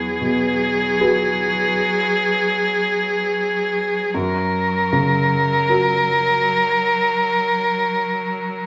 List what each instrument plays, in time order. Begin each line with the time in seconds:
Already playing: felt piano E2, cello F#3, violin G#4
0.21 felt piano B2
1.01 felt piano F#4 G#4 B4
4.14 felt piano F#2, cello F#3, violin A#4
4.92 felt piano C#3
5.69 felt piano F#4 A#4